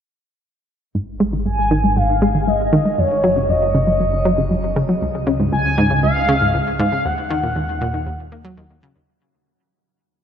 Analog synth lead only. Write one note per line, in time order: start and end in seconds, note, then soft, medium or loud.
1.46 1.98 G#5 loud
1.96 2.49 F5 loud
2.47 3.00 D#5 medium
2.98 3.50 C#5 loud
3.49 4.76 D#5 medium
5.52 6.00 G#5 loud
6.03 6.75 F5 loud
6.79 7.06 F5 medium
7.05 8.83 F#5 loud